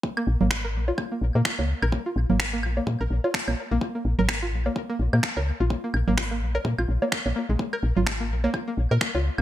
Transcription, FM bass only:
X:1
M:4/4
L:1/16
Q:"Swing 16ths" 1/4=127
K:Bbm
V:1 name="FM bass" clef=bass
z2 B,,, A,,,3 B,,, z3 B,,, B,, z D,, z B,,, | z2 B,,, A,,,3 B,,, z B,, B,,, B,,, z2 B,,, z B,,, | z2 B,,, A,,,3 B,,, z3 B,,, B,, z D,, z B,,, | z2 B,,, A,,,3 B,,, z B,, B,,, B,,, z2 B,,, z B,,, |
z2 B,,, A,,,3 B,,, z3 B,,, B,, z D,, z B,,, |]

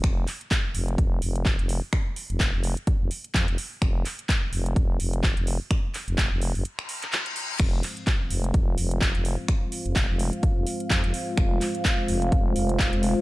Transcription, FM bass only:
X:1
M:4/4
L:1/16
Q:"Swing 16ths" 1/4=127
K:Fm
V:1 name="FM bass" clef=bass
F,,,2 z4 F,,,2 F,,,2 F,,,3 F,,,2 z | z3 F,,,2 F,,,2 z2 F,,, z2 F,, F,,, z2 | F,,,2 z4 F,,,2 F,,,2 F,,,3 F,,,2 z | z3 F,,,2 F,,,2 _G,,, z8 |
F,,,2 z4 F,,,2 F,,,2 F,,,3 F,,,2 z | z3 F,,,2 F,,,2 z2 F,,, z2 F,, F,,, z2 | F,,,2 z4 F,,,2 F,,,2 F,,,3 F,,,2 z |]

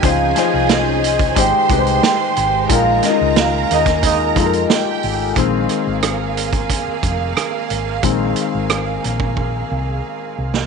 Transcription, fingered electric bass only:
X:1
M:4/4
L:1/16
Q:1/4=90
K:Bbdor
V:1 name="Fingered electric bass" clef=bass
D,,2 z C,,4- C,, A,,, z C,,2 z2 A,,,2 | B,,,2 z D,,3 E,,4 F,,2 z2 A,,,2 | B,,,2 z A,,,4- A,,, z2 F,,,2 z2 A,,,2 | B,,,2 z A,,,3 B,,,4 C,,2 z2 C,,2 |]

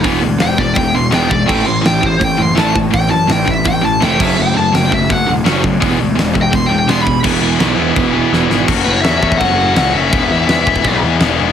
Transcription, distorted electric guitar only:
X:1
M:4/4
L:1/8
Q:1/4=167
K:Emix
V:1 name="Distorted electric guitar" clef=bass
[E,G,B,] [E,G,] [E,G,] [E,G,] [E,G,] [E,G,] [E,G,B,] [E,G,] | [A,,E,A,] [A,,E,] [A,,E,] [A,,E,] [A,,E,] [A,,E,] [A,,E,A,] [A,,E,] | [A,,E,] [A,,E,] [A,,E,] [A,,E,] [A,,E,] [A,,E,] [A,,E,A,] [F,A,C] | [F,A,] [F,A,] [F,A,] [F,A,] [F,A,] [F,A,] [F,A,C] [F,A,] |
[E,G,B,] [E,G,] [E,G,] [E,G,] [E,G,] [E,G,] [E,G,B,] [E,G,] | [E,G,B,E] [E,G,B,E] [E,G,B,E] [E,G,B,E] [E,G,B,E] [E,G,B,E] [E,G,B,E] [E,G,B,E] | [F,A,CF]2 [F,A,CF] [F,A,CF] [F,A,CF]2 [F,A,CF] [F,A,CF] | [E,G,B,E]2 [E,G,B,E] [E,G,B,E] [E,G,B,E]2 [E,G,B,E] [E,G,B,E] |]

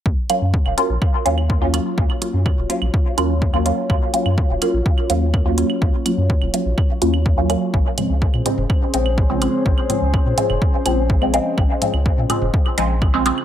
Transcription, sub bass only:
X:1
M:4/4
L:1/16
Q:1/4=125
K:Ebm
V:1 name="Sub bass" clef=bass
E,, z2 G,, z E,,, z B,,, z2 E,,4- E,, z | E,, z2 G,, z E,,, z B,,, z2 E,,4- E,, z | E,, z2 G,, z E,,, z B,,, z2 E,,4- E,, z | E,, z2 G,, z E,,, z B,,, z2 E,,4- E,, z |
B,,, z2 D,, z B,, z F,,, z2 B,,,4- B,,, z | B,,, z2 D,, z B,, z F,,, z2 B,,,4- B,,, z | B,,, z2 D,, z B,, z F,,, z2 B,,,4- B,,, z |]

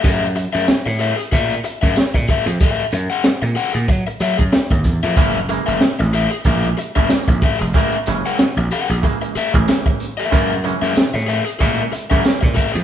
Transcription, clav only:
X:1
M:4/4
L:1/16
Q:"Swing 16ths" 1/4=93
K:F#mix
V:1 name="Clav" clef=bass
z16 | z16 | [C,E,G,A,] z [C,E,G,A,]3 z3 [C,E,G,A,]2 z [C,E,G,A,]3 z2 | [C,E,G,A,] z [C,E,G,C]3 z [G,A,] z [C,E,G,A,]2 z [C,E,G,A,]3 z2 |
[C,E,G,A,] z [C,E,G,C]3 z [G,A,] z [C,E,G,A,]2 z [C,E,G,=A,^A,]3 z2 |]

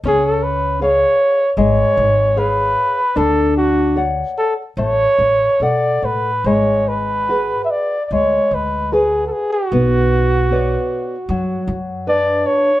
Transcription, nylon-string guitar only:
X:1
M:4/4
L:1/8
Q:1/4=75
K:Dlyd
V:1 name="Nylon-string guitar"
C2 [Gc^e]2 G,2 [Gce]2 | D2 [cdf]2 A,2 [Adf]2 | G,2 [FGB]2 G,2 [FGB]2 | B,2 [Bcd]2 F,2 [DB]2 |]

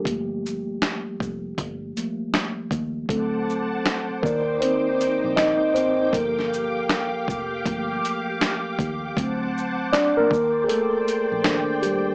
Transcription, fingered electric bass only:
X:1
M:4/4
L:1/16
Q:"Swing 16ths" 1/4=79
K:Gm
V:1 name="Fingered electric bass" clef=bass
G,,,6 F,,,2 G,,,2 z4 E,,2 | D,,4 z2 E,,2 z3 B,,,2 z3 | G,,,6 F,,,2 G,,,2 z4 E,,2 | D,,4 z2 E,,2 z3 B,,,2 z3 |]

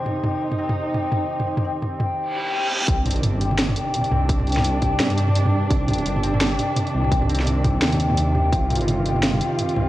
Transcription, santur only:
X:1
M:4/4
L:1/8
Q:"Swing 16ths" 1/4=170
K:Cm
V:1 name="Santur"
G G C C z G2 G | C C z G2 G, G C | C C z G2 G C C | z G2 G C C z G- |
G G C C z G2 G | C C z G2 C C G | C C z G2 G C C |]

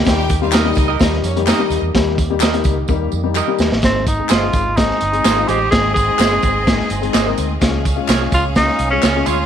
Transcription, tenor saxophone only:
X:1
M:4/4
L:1/16
Q:1/4=127
K:Ab
V:1 name="Tenor saxophone"
z16 | z16 | C2 E2 F4 E6 G2 | A2 A12 z2 |
z6 F2 E3 D3 F2 |]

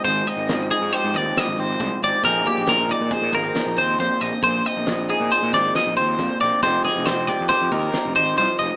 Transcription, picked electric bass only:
X:1
M:5/4
L:1/16
Q:1/4=137
K:Fdor
V:1 name="Picked electric bass" clef=bass
A,,,2 z A,,,4 A,, z A,, E,,2 z A,,, A,,,2 C,, z A,,, z | B,,,2 z B,,,4 B,, z B,, A,,,2 z B,,, E,,2 F,, z B,,, z | B,,,2 z B,,,4 B,, z B,, A,,,2 z B,,, E,,2 F,, z B,,, z | F,,,2 z F,,,4 F,, z F,, E,,2 z F,,, A,,,2 C,, z F,,, z |]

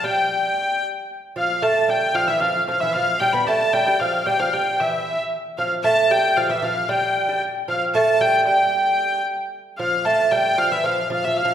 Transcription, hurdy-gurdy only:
X:1
M:2/4
L:1/16
Q:1/4=114
K:Flyd
V:1 name="Hurdy-gurdy"
g6 z2 | z2 f2 a2 g2 | f e f2 f e f2 | g b a2 g g f2 |
g f g2 e3 z | z2 f2 a2 g2 | f e f2 g4 | z2 f2 a2 g2 |
g6 z2 | z2 f2 a2 g2 | f e f2 f e f2 |]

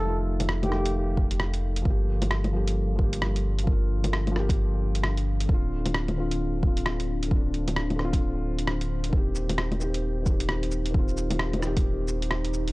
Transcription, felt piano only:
X:1
M:4/4
L:1/8
Q:"Swing 16ths" 1/4=132
K:Gm
V:1 name="Felt piano"
[E,A,F]3 [E,A,G]4- [E,A,G] | [F,B,G]3 [F,B,G]2 [F,B,G]3 | [F,B,F]3 [F,B,G]4- [F,B,G] | [D,CF]3 [D,CF]2 [D,CF]3 |
[D,CD]3 [D,CF]4- [D,CF] | [E,CG]3 [E,CG]2 [E,CG]3 | [E,CF]3 [E,CG]4- [E,CG] |]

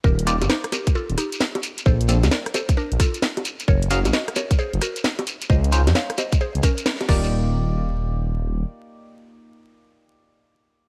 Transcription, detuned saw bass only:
X:1
M:4/4
L:1/16
Q:"Swing 16ths" 1/4=132
K:Eblyd
V:1 name="Detuned saw bass" clef=bass
E,,,3 G,,, z4 z E,,, z6 | B,,,3 D,, z4 z B,,, z6 | _G,,,3 B,,, z4 z G,,, z6 | _D,,3 F,, z4 z D,, z4 E,,,2- |
E,,,12 z4 | z16 |]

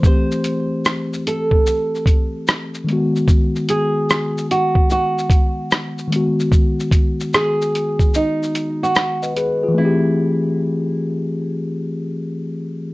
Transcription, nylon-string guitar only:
X:1
M:4/4
L:1/16
Q:"Swing 16ths" 1/4=74
K:Ador
V:1 name="Nylon-string guitar"
c6 A8 z2 | z2 ^G4 F2 F6 z2 | z4 ^G4 ^D3 F3 z2 | E16 |]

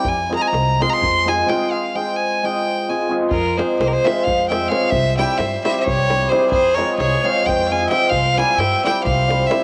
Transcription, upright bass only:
X:1
M:7/8
L:1/8
Q:1/4=131
K:Fm
V:1 name="Upright bass" clef=bass
F,,2 C,,2 F,,3 | z6 z | F,,2 C,, z F,,3 | C,,2 G,, z C,,3 |
F,,2 C,, z F,,3 | C,,2 G,, z C,,3 |]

